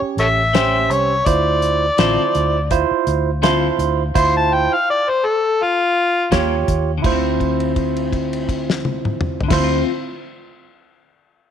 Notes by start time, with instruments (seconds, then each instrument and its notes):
Already playing: tine electric piano C#4 G4 C#5
0.02 muted fingered electric bass stroke
0.17 fingered electric bass A1, harmonica A4 C#5 E5, closed hi-hat
0.53 clean electric guitar A3 C#4 G4 C5, tine electric piano C#4 G4 C5, snare, closed hi-hat
0.89 fingered electric bass C2, harmonica C#5, closed hi-hat
1.26 fingered electric bass D2, tine electric piano E4 F4 C5, harmonica D5, kick, closed hi-hat
1.62 closed hi-hat
1.98 fingered electric bass A1, clean electric guitar D3 C4 F4 A4, tine electric piano E4 F4 C5, snare, closed hi-hat
2.35 fingered electric bass D2, closed hi-hat
2.71 tine electric piano E4 F4 C5, kick, closed hi-hat
2.91 muted fingered electric bass stroke
3.07 fingered electric bass D2, closed hi-hat
3.42 clean electric guitar D3 C4 F4 A4, tine electric piano E4 F4 C5, snare, closed hi-hat
3.79 fingered electric bass D2, closed hi-hat
4.15 fingered electric bass D2, tine electric piano E4 F4 C5, harmonica C6, kick, closed hi-hat, crash
4.37 harmonica A5
4.53 harmonica G5
4.73 harmonica F5
4.90 harmonica D5
5.10 harmonica C5
5.26 harmonica A4
5.62 harmonica F4
6.31 fingered electric bass D#2, clean electric guitar D#3 A#3 C#4 G4, tine electric piano F4 G4 C#5, kick, snare, closed hi-hat
6.68 fingered electric bass D#2, kick, closed hi-hat
6.98 clean electric guitar D3
7.02 fingered electric bass D2, clean electric guitar A3, tine electric piano E4 F4 C5, kick, crash
7.12 clean electric guitar C4
7.40 kick, crash
7.60 crash
7.76 kick, crash
7.96 crash
8.13 kick, crash
8.33 crash
8.49 kick, crash
8.70 snare
8.85 high tom
9.05 mid tom
9.21 mid tom
9.41 clean electric guitar D3, floor tom
9.48 fingered electric bass D2, clean electric guitar A3, tine electric piano E4 F4, kick, snare, crash
9.53 tine electric piano C5
9.58 clean electric guitar C4
9.64 clean electric guitar F4